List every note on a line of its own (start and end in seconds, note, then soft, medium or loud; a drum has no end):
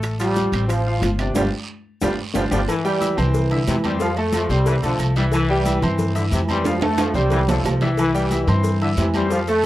0.00 0.47 A1 medium
0.00 0.14 A3 medium
0.00 0.14 A4 medium
0.00 high bongo medium
0.00 high conga soft
0.00 high timbale medium
0.00 long guiro medium
0.00 maracas medium
0.19 0.47 F3 medium
0.19 0.66 G3 loud
0.19 0.47 F4 medium
0.19 high conga soft
0.19 high timbale medium
0.19 maracas medium
0.36 high bongo medium
0.36 high conga medium
0.36 short guiro medium
0.36 maracas medium
0.52 0.99 A1 loud
0.52 0.81 C4 medium
0.52 0.81 C5 medium
0.52 high conga soft
0.52 high timbale medium
0.52 short guiro medium
0.52 maracas soft
0.68 0.98 F3 loud
0.68 high bongo medium
0.68 high conga soft
0.68 high timbale medium
0.68 long guiro medium
0.68 maracas medium
0.85 1.14 F4 medium
0.85 1.14 F5 medium
0.85 high conga soft
1.00 1.33 G1 medium
1.00 1.08 F3 medium
1.00 high bongo medium
1.00 low bongo medium
1.00 high conga medium
1.00 high timbale medium
1.00 short guiro medium
1.00 maracas medium
1.17 1.33 C3 medium
1.17 1.33 D4 medium
1.17 1.34 D5 medium
1.17 high timbale medium
1.17 short guiro medium
1.17 maracas soft
1.35 1.48 G1 loud
1.35 1.44 D3 medium
1.35 1.43 F3 loud
1.35 1.43 G3 loud
1.35 1.48 D4 medium
1.35 1.47 F4 medium
1.35 1.47 G4 medium
1.35 low bongo medium
1.35 high conga loud
1.35 high timbale loud
1.35 long guiro medium
1.35 maracas medium
2.01 2.14 G1 medium
2.01 2.10 D3 medium
2.01 2.10 F3 loud
2.01 2.10 G3 loud
2.01 2.13 D4 medium
2.01 2.13 F4 loud
2.01 2.13 G4 medium
2.01 low bongo loud
2.01 high conga loud
2.01 high timbale loud
2.01 long guiro loud
2.01 maracas loud
2.34 2.47 G1 medium
2.34 2.43 D3 medium
2.34 2.43 F3 medium
2.34 2.44 G3 medium
2.34 2.46 D4 medium
2.34 2.46 F4 medium
2.34 2.46 G4 medium
2.34 low bongo medium
2.34 high conga medium
2.34 high timbale medium
2.34 long guiro medium
2.34 maracas loud
2.51 2.64 G1 medium
2.51 2.60 D3 loud
2.51 2.60 F3 loud
2.51 2.60 G3 medium
2.51 2.62 D4 medium
2.51 2.62 F4 medium
2.51 2.62 G4 medium
2.51 low bongo medium
2.51 high conga loud
2.51 high timbale medium
2.51 long guiro loud
2.51 maracas loud
2.68 3.18 E3 medium
2.68 cowbell loud
2.68 high conga soft
2.68 low agogo loud
2.68 long guiro medium
2.68 maracas medium
2.84 2.98 G3 medium
2.84 3.16 G3 loud
2.84 2.98 G4 medium
2.84 2.99 G5 medium
2.84 high conga soft
2.84 maracas medium
3.00 3.14 E4 medium
3.00 3.15 E5 medium
3.00 3.15 E6 medium
3.00 cowbell medium
3.00 high conga medium
3.00 low agogo medium
3.00 short guiro medium
3.00 maracas medium
3.17 3.64 C2 medium
3.17 3.65 E3 medium
3.17 3.45 C4 medium
3.17 3.45 C5 medium
3.17 3.45 C6 medium
3.17 cowbell medium
3.17 high conga soft
3.17 low conga medium
3.17 low agogo loud
3.17 short guiro medium
3.17 maracas soft
3.34 cowbell loud
3.34 high conga soft
3.34 long guiro medium
3.34 maracas medium
3.51 3.60 D3 medium
3.51 3.78 E4 medium
3.51 3.79 E5 medium
3.51 3.79 E6 medium
3.51 cowbell medium
3.51 high conga soft
3.51 low agogo medium
3.66 4.44 F2 medium
3.66 3.76 C3 medium
3.66 3.98 E3 medium
3.66 cowbell medium
3.66 high conga medium
3.66 low timbale medium
3.66 low agogo medium
3.66 short guiro medium
3.66 maracas medium
3.84 4.11 G3 medium
3.84 3.98 C4 medium
3.84 3.98 C5 medium
3.84 3.98 C6 medium
3.84 high conga medium
3.84 low agogo medium
3.84 short guiro medium
3.84 maracas soft
3.99 4.15 F3 loud
3.99 4.14 F3 medium
3.99 4.15 F4 medium
3.99 4.15 F5 medium
3.99 cowbell loud
3.99 high conga soft
3.99 long guiro medium
3.99 maracas medium
4.17 4.50 A3 loud
4.17 4.45 A3 medium
4.17 4.45 A4 medium
4.17 4.45 A5 medium
4.17 cowbell medium
4.17 high conga soft
4.17 low agogo medium
4.33 4.51 F3 medium
4.33 cowbell medium
4.33 high conga medium
4.33 low agogo loud
4.33 short guiro medium
4.33 maracas medium
4.49 4.80 C2 medium
4.49 4.83 G3 medium
4.49 4.77 C4 medium
4.49 4.77 C5 medium
4.49 4.78 C6 medium
4.49 cowbell medium
4.49 short guiro medium
4.49 maracas soft
4.66 4.76 E3 medium
4.66 cowbell loud
4.66 high conga soft
4.66 low agogo medium
4.66 long guiro medium
4.66 maracas medium
4.83 4.98 B1 medium
4.83 5.01 D3 medium
4.83 5.15 F3 medium
4.83 5.10 A3 medium
4.83 5.10 A4 medium
4.83 5.11 A5 medium
4.83 high conga soft
4.83 low agogo medium
4.83 maracas medium
4.99 5.76 C2 medium
4.99 cowbell medium
4.99 high conga soft
4.99 low agogo loud
4.99 short guiro medium
4.99 maracas medium
5.16 5.44 E3 medium
5.16 5.25 G3 medium
5.16 5.44 E4 medium
5.16 5.44 E5 medium
5.16 cowbell medium
5.16 short guiro medium
5.16 maracas soft
5.32 5.83 E3 loud
5.32 cowbell loud
5.32 high conga soft
5.32 low agogo loud
5.32 long guiro medium
5.32 maracas medium
5.49 5.80 G3 loud
5.49 5.63 G3 medium
5.49 5.64 G4 medium
5.49 5.64 G5 medium
5.49 high conga soft
5.65 5.79 E4 medium
5.65 5.80 E5 medium
5.65 5.80 E6 medium
5.65 cowbell medium
5.65 high conga medium
5.65 low agogo medium
5.65 short guiro medium
5.65 maracas medium
5.82 6.29 G2 loud
5.82 6.28 E3 medium
5.82 6.10 C4 medium
5.82 6.10 C5 medium
5.82 6.10 C6 medium
5.82 cowbell medium
5.82 high conga soft
5.82 low conga medium
5.82 low agogo loud
5.82 short guiro medium
5.82 maracas soft
5.99 cowbell loud
5.99 high conga soft
5.99 low conga medium
5.99 long guiro medium
5.99 maracas medium
6.15 6.25 D3 medium
6.15 6.43 E4 medium
6.15 6.43 E5 medium
6.15 6.43 E6 medium
6.15 cowbell medium
6.15 high conga soft
6.15 low agogo medium
6.15 maracas medium
6.31 7.09 F2 medium
6.31 6.42 C3 medium
6.31 6.63 E3 medium
6.31 cowbell medium
6.31 high conga medium
6.31 low agogo medium
6.31 short guiro medium
6.31 maracas medium
6.48 6.77 G3 medium
6.48 6.63 C4 medium
6.48 6.63 C5 medium
6.48 6.64 C6 medium
6.48 high conga medium
6.48 low agogo loud
6.48 short guiro medium
6.48 maracas soft
6.65 6.82 F3 loud
6.65 6.79 F3 medium
6.65 6.79 F4 medium
6.65 6.80 F5 medium
6.65 cowbell medium
6.65 high conga medium
6.65 high timbale medium
6.65 long guiro medium
6.65 maracas medium
6.81 7.15 A3 loud
6.81 7.09 A3 medium
6.81 7.10 A4 medium
6.81 7.10 A5 medium
6.81 cowbell medium
6.81 high conga loud
6.81 high timbale loud
6.81 low agogo medium
6.97 7.16 F3 medium
6.97 cowbell medium
6.97 high conga loud
6.97 high timbale loud
6.97 low agogo loud
6.97 short guiro medium
6.97 maracas medium
7.14 7.61 C2 medium
7.14 7.46 G3 loud
7.14 7.42 C4 medium
7.14 7.42 C5 medium
7.14 7.43 C6 medium
7.14 cowbell medium
7.14 low conga medium
7.14 low timbale medium
7.14 short guiro medium
7.14 maracas soft
7.30 7.41 E3 medium
7.30 cowbell loud
7.30 low conga medium
7.30 low agogo medium
7.30 long guiro medium
7.30 maracas medium
7.48 7.66 D3 medium
7.48 7.81 F3 medium
7.48 7.76 A3 medium
7.48 7.76 A4 medium
7.48 7.76 A5 medium
7.48 low conga loud
7.48 low timbale loud
7.48 low agogo medium
7.48 maracas medium
7.64 8.42 C2 medium
7.64 cowbell medium
7.64 low conga medium
7.64 low timbale loud
7.64 low agogo loud
7.64 short guiro medium
7.64 maracas medium
7.81 8.09 E3 medium
7.81 7.90 G3 medium
7.81 8.09 E4 medium
7.81 8.09 E5 medium
7.81 cowbell medium
7.81 low conga medium
7.81 low timbale medium
7.81 short guiro medium
7.81 maracas soft
7.97 8.48 E3 medium
7.97 cowbell loud
7.97 high conga soft
7.97 low agogo loud
7.97 long guiro medium
7.97 maracas medium
8.13 8.45 G3 medium
8.13 8.28 G3 medium
8.13 8.28 G4 medium
8.13 8.29 G5 medium
8.13 high conga soft
8.13 maracas medium
8.31 8.45 E4 medium
8.31 8.45 E5 medium
8.31 8.45 E6 medium
8.31 cowbell medium
8.31 high conga loud
8.31 low agogo medium
8.31 short guiro medium
8.31 maracas medium
8.47 8.94 G2 loud
8.47 8.93 E3 medium
8.47 8.75 C4 medium
8.47 8.75 C5 medium
8.47 8.76 C6 medium
8.47 cowbell medium
8.47 high conga soft
8.47 low conga medium
8.47 low agogo loud
8.47 short guiro medium
8.47 maracas soft
8.64 cowbell loud
8.64 high conga soft
8.64 long guiro medium
8.64 maracas medium
8.81 8.91 D3 medium
8.81 9.09 E4 medium
8.81 9.09 E5 medium
8.81 9.09 E6 medium
8.81 cowbell medium
8.81 high conga soft
8.81 low agogo medium
8.96 9.66 F2 medium
8.96 9.07 C3 medium
8.96 9.28 E3 medium
8.96 cowbell medium
8.96 high conga medium
8.96 low timbale medium
8.96 low agogo medium
8.96 short guiro medium
8.96 maracas medium
9.14 9.41 G3 medium
9.14 9.29 C4 medium
9.14 9.29 C5 medium
9.14 9.29 C6 medium
9.14 high conga medium
9.14 low agogo loud
9.14 short guiro medium
9.14 maracas soft
9.30 9.38 F3 loud
9.30 9.45 F3 medium
9.30 9.45 F4 medium
9.30 9.45 F5 medium
9.30 cowbell loud
9.30 high conga soft
9.30 long guiro medium
9.30 maracas medium
9.47 9.66 A3 loud
9.47 9.66 A3 medium
9.47 9.66 A4 medium
9.47 9.66 A5 medium
9.47 cowbell medium
9.47 high conga soft
9.47 low agogo medium
9.47 maracas medium